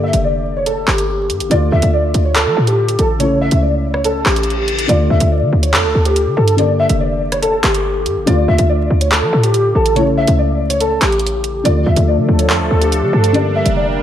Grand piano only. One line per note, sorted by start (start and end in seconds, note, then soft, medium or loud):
0.04 0.20 E5 medium
0.24 0.54 D5 medium
0.57 0.65 C#5 medium
0.66 0.83 A4 medium
0.87 1.47 G4 medium
1.51 1.68 D5 loud
1.72 1.89 E5 medium
1.93 2.23 D5 medium
2.25 2.33 C#5 medium
2.35 2.65 A4 medium
2.67 2.97 G4 medium
2.99 3.16 A4 medium
3.20 3.37 C#5 medium
3.42 3.58 E5 medium
3.62 3.92 D5 medium
3.94 4.02 C#5 medium
4.05 4.22 A4 medium
4.26 4.85 G4 medium
4.89 5.06 D5 loud
5.11 5.28 E5 medium
5.32 5.61 D5 medium
5.63 5.71 C#5 medium
5.73 6.03 A4 medium
6.05 6.35 G4 medium
6.37 6.54 A4 medium
6.59 6.75 D5 medium
6.80 6.96 E5 medium
7.00 7.30 D5 medium
7.33 7.41 C#5 medium
7.42 7.59 A4 medium
7.63 8.23 G4 medium
8.27 8.44 D5 loud
8.48 8.65 E5 medium
8.69 8.99 D5 medium
9.01 9.09 C#5 medium
9.11 9.41 A4 medium
9.43 9.73 G4 medium
9.76 9.92 A4 medium
9.96 10.13 C#5 medium
10.18 10.34 E5 medium
10.39 10.68 D5 medium
10.70 10.78 C#5 medium
10.81 10.98 A4 medium
11.01 11.61 G4 medium
11.65 11.82 D5 loud
11.87 12.04 E5 medium
12.08 12.37 D5 medium
12.39 12.47 C#5 medium
12.49 12.79 A4 medium
12.81 13.11 G4 medium
13.13 13.30 A4 medium
13.35 13.51 D5 medium
13.56 13.72 E5 medium
13.77 14.03 D5 medium